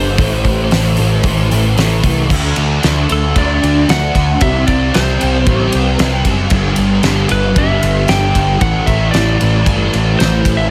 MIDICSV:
0, 0, Header, 1, 5, 480
1, 0, Start_track
1, 0, Tempo, 525855
1, 176, Time_signature, 4, 2, 24, 8
1, 9772, End_track
2, 0, Start_track
2, 0, Title_t, "Lead electric guitar"
2, 0, Program_c, 0, 29
2, 0, Note_on_c, 0, 72, 78
2, 1817, Note_off_c, 0, 72, 0
2, 2851, Note_on_c, 0, 69, 76
2, 3085, Note_off_c, 0, 69, 0
2, 3086, Note_on_c, 0, 74, 88
2, 3560, Note_on_c, 0, 78, 95
2, 3570, Note_off_c, 0, 74, 0
2, 4035, Note_on_c, 0, 76, 116
2, 4047, Note_off_c, 0, 78, 0
2, 4257, Note_off_c, 0, 76, 0
2, 4261, Note_on_c, 0, 74, 98
2, 4511, Note_off_c, 0, 74, 0
2, 4512, Note_on_c, 0, 72, 87
2, 5270, Note_off_c, 0, 72, 0
2, 5270, Note_on_c, 0, 71, 87
2, 5672, Note_off_c, 0, 71, 0
2, 6678, Note_on_c, 0, 71, 83
2, 6918, Note_off_c, 0, 71, 0
2, 6921, Note_on_c, 0, 76, 83
2, 7384, Note_on_c, 0, 79, 90
2, 7405, Note_off_c, 0, 76, 0
2, 7860, Note_off_c, 0, 79, 0
2, 7864, Note_on_c, 0, 78, 96
2, 8091, Note_on_c, 0, 76, 89
2, 8109, Note_off_c, 0, 78, 0
2, 8312, Note_off_c, 0, 76, 0
2, 8316, Note_on_c, 0, 74, 93
2, 9300, Note_on_c, 0, 72, 84
2, 9313, Note_off_c, 0, 74, 0
2, 9649, Note_on_c, 0, 76, 96
2, 9667, Note_off_c, 0, 72, 0
2, 9756, Note_off_c, 0, 76, 0
2, 9772, End_track
3, 0, Start_track
3, 0, Title_t, "Distorted electric guitar"
3, 0, Program_c, 1, 30
3, 0, Note_on_c, 1, 43, 73
3, 0, Note_on_c, 1, 50, 63
3, 0, Note_on_c, 1, 55, 76
3, 151, Note_off_c, 1, 50, 0
3, 152, Note_off_c, 1, 43, 0
3, 152, Note_off_c, 1, 55, 0
3, 154, Note_on_c, 1, 45, 93
3, 166, Note_on_c, 1, 52, 89
3, 176, Note_on_c, 1, 57, 106
3, 396, Note_off_c, 1, 57, 0
3, 407, Note_on_c, 1, 57, 76
3, 422, Note_off_c, 1, 52, 0
3, 433, Note_on_c, 1, 52, 64
3, 641, Note_off_c, 1, 45, 0
3, 652, Note_on_c, 1, 45, 65
3, 653, Note_off_c, 1, 52, 0
3, 664, Note_on_c, 1, 52, 84
3, 667, Note_off_c, 1, 57, 0
3, 678, Note_on_c, 1, 57, 80
3, 882, Note_off_c, 1, 57, 0
3, 893, Note_on_c, 1, 57, 82
3, 908, Note_off_c, 1, 52, 0
3, 919, Note_on_c, 1, 52, 50
3, 1121, Note_off_c, 1, 45, 0
3, 1131, Note_off_c, 1, 52, 0
3, 1132, Note_on_c, 1, 45, 99
3, 1142, Note_on_c, 1, 52, 96
3, 1145, Note_off_c, 1, 57, 0
3, 1156, Note_on_c, 1, 57, 101
3, 1361, Note_off_c, 1, 57, 0
3, 1372, Note_on_c, 1, 57, 72
3, 1390, Note_off_c, 1, 52, 0
3, 1401, Note_on_c, 1, 52, 55
3, 1596, Note_off_c, 1, 45, 0
3, 1607, Note_on_c, 1, 45, 64
3, 1609, Note_off_c, 1, 52, 0
3, 1619, Note_off_c, 1, 57, 0
3, 1620, Note_on_c, 1, 52, 75
3, 1630, Note_on_c, 1, 57, 89
3, 1847, Note_off_c, 1, 57, 0
3, 1858, Note_on_c, 1, 57, 84
3, 1872, Note_off_c, 1, 52, 0
3, 1883, Note_on_c, 1, 52, 63
3, 2081, Note_off_c, 1, 45, 0
3, 2086, Note_off_c, 1, 57, 0
3, 2093, Note_on_c, 1, 50, 94
3, 2098, Note_off_c, 1, 52, 0
3, 2109, Note_on_c, 1, 57, 98
3, 2119, Note_on_c, 1, 62, 102
3, 2583, Note_off_c, 1, 50, 0
3, 2594, Note_off_c, 1, 57, 0
3, 2594, Note_on_c, 1, 50, 74
3, 2601, Note_off_c, 1, 62, 0
3, 2605, Note_on_c, 1, 57, 74
3, 2612, Note_on_c, 1, 62, 80
3, 2816, Note_off_c, 1, 62, 0
3, 2827, Note_on_c, 1, 62, 74
3, 2840, Note_off_c, 1, 57, 0
3, 2850, Note_on_c, 1, 57, 55
3, 3051, Note_off_c, 1, 50, 0
3, 3061, Note_off_c, 1, 57, 0
3, 3062, Note_on_c, 1, 50, 85
3, 3071, Note_off_c, 1, 62, 0
3, 3072, Note_on_c, 1, 57, 96
3, 3082, Note_on_c, 1, 62, 118
3, 3539, Note_off_c, 1, 50, 0
3, 3549, Note_off_c, 1, 57, 0
3, 3550, Note_on_c, 1, 50, 63
3, 3560, Note_off_c, 1, 62, 0
3, 3560, Note_on_c, 1, 57, 85
3, 3571, Note_on_c, 1, 62, 81
3, 4014, Note_off_c, 1, 50, 0
3, 4019, Note_off_c, 1, 57, 0
3, 4021, Note_on_c, 1, 48, 100
3, 4024, Note_off_c, 1, 62, 0
3, 4035, Note_on_c, 1, 55, 94
3, 4050, Note_on_c, 1, 60, 110
3, 4490, Note_off_c, 1, 48, 0
3, 4501, Note_on_c, 1, 48, 66
3, 4514, Note_off_c, 1, 55, 0
3, 4515, Note_off_c, 1, 60, 0
3, 4517, Note_on_c, 1, 55, 79
3, 4526, Note_on_c, 1, 60, 80
3, 4732, Note_off_c, 1, 60, 0
3, 4743, Note_on_c, 1, 60, 69
3, 4764, Note_off_c, 1, 55, 0
3, 4768, Note_on_c, 1, 55, 60
3, 4962, Note_off_c, 1, 48, 0
3, 4973, Note_on_c, 1, 48, 103
3, 4981, Note_off_c, 1, 55, 0
3, 4985, Note_on_c, 1, 55, 108
3, 4988, Note_off_c, 1, 60, 0
3, 4999, Note_on_c, 1, 60, 97
3, 5447, Note_off_c, 1, 48, 0
3, 5458, Note_on_c, 1, 48, 73
3, 5467, Note_off_c, 1, 55, 0
3, 5471, Note_off_c, 1, 60, 0
3, 5471, Note_on_c, 1, 55, 86
3, 5482, Note_on_c, 1, 60, 78
3, 5927, Note_off_c, 1, 48, 0
3, 5939, Note_off_c, 1, 60, 0
3, 5948, Note_on_c, 1, 43, 92
3, 5960, Note_on_c, 1, 50, 98
3, 5967, Note_off_c, 1, 55, 0
3, 5971, Note_on_c, 1, 55, 107
3, 6403, Note_off_c, 1, 43, 0
3, 6414, Note_on_c, 1, 43, 69
3, 6415, Note_off_c, 1, 50, 0
3, 6426, Note_on_c, 1, 50, 81
3, 6436, Note_off_c, 1, 55, 0
3, 6440, Note_on_c, 1, 55, 87
3, 6650, Note_off_c, 1, 55, 0
3, 6654, Note_on_c, 1, 55, 78
3, 6664, Note_off_c, 1, 50, 0
3, 6675, Note_on_c, 1, 50, 61
3, 6886, Note_off_c, 1, 43, 0
3, 6897, Note_on_c, 1, 43, 93
3, 6899, Note_off_c, 1, 50, 0
3, 6910, Note_on_c, 1, 50, 113
3, 6912, Note_off_c, 1, 55, 0
3, 6923, Note_on_c, 1, 55, 117
3, 7357, Note_off_c, 1, 43, 0
3, 7368, Note_on_c, 1, 43, 71
3, 7370, Note_off_c, 1, 50, 0
3, 7381, Note_on_c, 1, 50, 81
3, 7383, Note_off_c, 1, 55, 0
3, 7394, Note_on_c, 1, 55, 81
3, 7836, Note_off_c, 1, 50, 0
3, 7839, Note_on_c, 1, 45, 84
3, 7840, Note_off_c, 1, 43, 0
3, 7853, Note_off_c, 1, 55, 0
3, 7859, Note_on_c, 1, 52, 98
3, 7867, Note_on_c, 1, 57, 92
3, 8321, Note_off_c, 1, 45, 0
3, 8332, Note_on_c, 1, 45, 68
3, 8337, Note_off_c, 1, 52, 0
3, 8348, Note_on_c, 1, 52, 83
3, 8353, Note_off_c, 1, 57, 0
3, 8356, Note_on_c, 1, 57, 71
3, 8562, Note_off_c, 1, 57, 0
3, 8566, Note_on_c, 1, 57, 81
3, 8584, Note_off_c, 1, 52, 0
3, 8595, Note_on_c, 1, 52, 57
3, 8803, Note_off_c, 1, 45, 0
3, 8814, Note_on_c, 1, 45, 94
3, 8817, Note_off_c, 1, 52, 0
3, 8828, Note_on_c, 1, 52, 112
3, 8829, Note_off_c, 1, 57, 0
3, 8839, Note_on_c, 1, 57, 102
3, 9284, Note_off_c, 1, 45, 0
3, 9294, Note_off_c, 1, 52, 0
3, 9295, Note_on_c, 1, 45, 71
3, 9301, Note_off_c, 1, 57, 0
3, 9305, Note_on_c, 1, 52, 70
3, 9312, Note_on_c, 1, 57, 79
3, 9759, Note_off_c, 1, 45, 0
3, 9764, Note_off_c, 1, 52, 0
3, 9767, Note_off_c, 1, 57, 0
3, 9772, End_track
4, 0, Start_track
4, 0, Title_t, "Picked electric bass"
4, 0, Program_c, 2, 34
4, 0, Note_on_c, 2, 31, 85
4, 168, Note_off_c, 2, 31, 0
4, 173, Note_on_c, 2, 33, 99
4, 641, Note_off_c, 2, 33, 0
4, 658, Note_on_c, 2, 33, 83
4, 891, Note_off_c, 2, 33, 0
4, 900, Note_on_c, 2, 33, 80
4, 1128, Note_off_c, 2, 33, 0
4, 1134, Note_on_c, 2, 33, 85
4, 1370, Note_off_c, 2, 33, 0
4, 1386, Note_on_c, 2, 33, 82
4, 1616, Note_off_c, 2, 33, 0
4, 1620, Note_on_c, 2, 33, 91
4, 1851, Note_off_c, 2, 33, 0
4, 1857, Note_on_c, 2, 36, 87
4, 2092, Note_off_c, 2, 36, 0
4, 2106, Note_on_c, 2, 38, 93
4, 2300, Note_off_c, 2, 38, 0
4, 2345, Note_on_c, 2, 38, 93
4, 2539, Note_off_c, 2, 38, 0
4, 2593, Note_on_c, 2, 38, 86
4, 2785, Note_off_c, 2, 38, 0
4, 2838, Note_on_c, 2, 38, 84
4, 3028, Note_off_c, 2, 38, 0
4, 3073, Note_on_c, 2, 38, 91
4, 3265, Note_off_c, 2, 38, 0
4, 3315, Note_on_c, 2, 38, 90
4, 3506, Note_off_c, 2, 38, 0
4, 3545, Note_on_c, 2, 38, 88
4, 3740, Note_off_c, 2, 38, 0
4, 3792, Note_on_c, 2, 38, 94
4, 3984, Note_off_c, 2, 38, 0
4, 4035, Note_on_c, 2, 36, 92
4, 4226, Note_off_c, 2, 36, 0
4, 4279, Note_on_c, 2, 36, 94
4, 4469, Note_off_c, 2, 36, 0
4, 4533, Note_on_c, 2, 36, 86
4, 4717, Note_off_c, 2, 36, 0
4, 4772, Note_on_c, 2, 36, 91
4, 4956, Note_off_c, 2, 36, 0
4, 4997, Note_on_c, 2, 33, 86
4, 5188, Note_off_c, 2, 33, 0
4, 5245, Note_on_c, 2, 36, 91
4, 5432, Note_off_c, 2, 36, 0
4, 5483, Note_on_c, 2, 36, 93
4, 5671, Note_off_c, 2, 36, 0
4, 5707, Note_on_c, 2, 30, 87
4, 5902, Note_off_c, 2, 30, 0
4, 5945, Note_on_c, 2, 31, 102
4, 6140, Note_off_c, 2, 31, 0
4, 6186, Note_on_c, 2, 31, 99
4, 6381, Note_off_c, 2, 31, 0
4, 6418, Note_on_c, 2, 31, 89
4, 6615, Note_off_c, 2, 31, 0
4, 6669, Note_on_c, 2, 31, 95
4, 6862, Note_off_c, 2, 31, 0
4, 6905, Note_on_c, 2, 31, 88
4, 7099, Note_off_c, 2, 31, 0
4, 7149, Note_on_c, 2, 31, 91
4, 7341, Note_off_c, 2, 31, 0
4, 7384, Note_on_c, 2, 31, 96
4, 7578, Note_off_c, 2, 31, 0
4, 7624, Note_on_c, 2, 31, 84
4, 7818, Note_off_c, 2, 31, 0
4, 7860, Note_on_c, 2, 33, 91
4, 8055, Note_off_c, 2, 33, 0
4, 8108, Note_on_c, 2, 33, 95
4, 8299, Note_off_c, 2, 33, 0
4, 8356, Note_on_c, 2, 33, 74
4, 8544, Note_off_c, 2, 33, 0
4, 8598, Note_on_c, 2, 33, 90
4, 8785, Note_off_c, 2, 33, 0
4, 8822, Note_on_c, 2, 31, 81
4, 9015, Note_off_c, 2, 31, 0
4, 9072, Note_on_c, 2, 33, 81
4, 9260, Note_off_c, 2, 33, 0
4, 9315, Note_on_c, 2, 33, 90
4, 9502, Note_off_c, 2, 33, 0
4, 9548, Note_on_c, 2, 33, 87
4, 9737, Note_off_c, 2, 33, 0
4, 9772, End_track
5, 0, Start_track
5, 0, Title_t, "Drums"
5, 168, Note_on_c, 9, 36, 118
5, 168, Note_on_c, 9, 46, 73
5, 259, Note_off_c, 9, 36, 0
5, 259, Note_off_c, 9, 46, 0
5, 408, Note_on_c, 9, 36, 74
5, 409, Note_on_c, 9, 46, 50
5, 500, Note_off_c, 9, 36, 0
5, 500, Note_off_c, 9, 46, 0
5, 649, Note_on_c, 9, 46, 76
5, 659, Note_on_c, 9, 38, 108
5, 741, Note_off_c, 9, 46, 0
5, 751, Note_off_c, 9, 38, 0
5, 881, Note_on_c, 9, 46, 57
5, 973, Note_off_c, 9, 46, 0
5, 1127, Note_on_c, 9, 46, 76
5, 1130, Note_on_c, 9, 36, 103
5, 1218, Note_off_c, 9, 46, 0
5, 1221, Note_off_c, 9, 36, 0
5, 1382, Note_on_c, 9, 46, 64
5, 1474, Note_off_c, 9, 46, 0
5, 1621, Note_on_c, 9, 46, 82
5, 1631, Note_on_c, 9, 38, 105
5, 1712, Note_off_c, 9, 46, 0
5, 1722, Note_off_c, 9, 38, 0
5, 1858, Note_on_c, 9, 36, 78
5, 1858, Note_on_c, 9, 46, 64
5, 1949, Note_off_c, 9, 46, 0
5, 1950, Note_off_c, 9, 36, 0
5, 2101, Note_on_c, 9, 36, 123
5, 2107, Note_on_c, 9, 49, 119
5, 2193, Note_off_c, 9, 36, 0
5, 2198, Note_off_c, 9, 49, 0
5, 2337, Note_on_c, 9, 51, 76
5, 2428, Note_off_c, 9, 51, 0
5, 2584, Note_on_c, 9, 51, 100
5, 2594, Note_on_c, 9, 38, 103
5, 2676, Note_off_c, 9, 51, 0
5, 2686, Note_off_c, 9, 38, 0
5, 2823, Note_on_c, 9, 51, 76
5, 2914, Note_off_c, 9, 51, 0
5, 3064, Note_on_c, 9, 51, 94
5, 3065, Note_on_c, 9, 36, 103
5, 3156, Note_off_c, 9, 51, 0
5, 3157, Note_off_c, 9, 36, 0
5, 3317, Note_on_c, 9, 51, 71
5, 3409, Note_off_c, 9, 51, 0
5, 3551, Note_on_c, 9, 51, 91
5, 3561, Note_on_c, 9, 38, 120
5, 3642, Note_off_c, 9, 51, 0
5, 3652, Note_off_c, 9, 38, 0
5, 3788, Note_on_c, 9, 36, 77
5, 3790, Note_on_c, 9, 51, 68
5, 3880, Note_off_c, 9, 36, 0
5, 3881, Note_off_c, 9, 51, 0
5, 4022, Note_on_c, 9, 51, 102
5, 4029, Note_on_c, 9, 36, 123
5, 4114, Note_off_c, 9, 51, 0
5, 4120, Note_off_c, 9, 36, 0
5, 4267, Note_on_c, 9, 51, 73
5, 4270, Note_on_c, 9, 36, 78
5, 4359, Note_off_c, 9, 51, 0
5, 4362, Note_off_c, 9, 36, 0
5, 4511, Note_on_c, 9, 51, 95
5, 4521, Note_on_c, 9, 38, 112
5, 4602, Note_off_c, 9, 51, 0
5, 4612, Note_off_c, 9, 38, 0
5, 4754, Note_on_c, 9, 51, 81
5, 4845, Note_off_c, 9, 51, 0
5, 4990, Note_on_c, 9, 36, 116
5, 4990, Note_on_c, 9, 51, 88
5, 5081, Note_off_c, 9, 36, 0
5, 5081, Note_off_c, 9, 51, 0
5, 5225, Note_on_c, 9, 51, 81
5, 5316, Note_off_c, 9, 51, 0
5, 5467, Note_on_c, 9, 51, 109
5, 5477, Note_on_c, 9, 38, 110
5, 5559, Note_off_c, 9, 51, 0
5, 5569, Note_off_c, 9, 38, 0
5, 5703, Note_on_c, 9, 51, 80
5, 5705, Note_on_c, 9, 36, 82
5, 5794, Note_off_c, 9, 51, 0
5, 5796, Note_off_c, 9, 36, 0
5, 5933, Note_on_c, 9, 51, 113
5, 5943, Note_on_c, 9, 36, 118
5, 6024, Note_off_c, 9, 51, 0
5, 6035, Note_off_c, 9, 36, 0
5, 6170, Note_on_c, 9, 51, 83
5, 6261, Note_off_c, 9, 51, 0
5, 6416, Note_on_c, 9, 51, 101
5, 6426, Note_on_c, 9, 38, 102
5, 6507, Note_off_c, 9, 51, 0
5, 6517, Note_off_c, 9, 38, 0
5, 6654, Note_on_c, 9, 51, 77
5, 6745, Note_off_c, 9, 51, 0
5, 6900, Note_on_c, 9, 51, 93
5, 6902, Note_on_c, 9, 36, 100
5, 6991, Note_off_c, 9, 51, 0
5, 6993, Note_off_c, 9, 36, 0
5, 7144, Note_on_c, 9, 51, 76
5, 7236, Note_off_c, 9, 51, 0
5, 7375, Note_on_c, 9, 51, 89
5, 7385, Note_on_c, 9, 38, 110
5, 7467, Note_off_c, 9, 51, 0
5, 7477, Note_off_c, 9, 38, 0
5, 7623, Note_on_c, 9, 36, 81
5, 7625, Note_on_c, 9, 51, 69
5, 7715, Note_off_c, 9, 36, 0
5, 7716, Note_off_c, 9, 51, 0
5, 7859, Note_on_c, 9, 51, 103
5, 7861, Note_on_c, 9, 36, 116
5, 7950, Note_off_c, 9, 51, 0
5, 7953, Note_off_c, 9, 36, 0
5, 8099, Note_on_c, 9, 36, 76
5, 8101, Note_on_c, 9, 51, 70
5, 8190, Note_off_c, 9, 36, 0
5, 8193, Note_off_c, 9, 51, 0
5, 8340, Note_on_c, 9, 51, 90
5, 8350, Note_on_c, 9, 38, 110
5, 8431, Note_off_c, 9, 51, 0
5, 8441, Note_off_c, 9, 38, 0
5, 8586, Note_on_c, 9, 51, 75
5, 8677, Note_off_c, 9, 51, 0
5, 8821, Note_on_c, 9, 36, 103
5, 8824, Note_on_c, 9, 51, 92
5, 8912, Note_off_c, 9, 36, 0
5, 8915, Note_off_c, 9, 51, 0
5, 9068, Note_on_c, 9, 51, 68
5, 9160, Note_off_c, 9, 51, 0
5, 9311, Note_on_c, 9, 51, 93
5, 9321, Note_on_c, 9, 38, 101
5, 9402, Note_off_c, 9, 51, 0
5, 9412, Note_off_c, 9, 38, 0
5, 9541, Note_on_c, 9, 36, 82
5, 9544, Note_on_c, 9, 51, 81
5, 9632, Note_off_c, 9, 36, 0
5, 9636, Note_off_c, 9, 51, 0
5, 9772, End_track
0, 0, End_of_file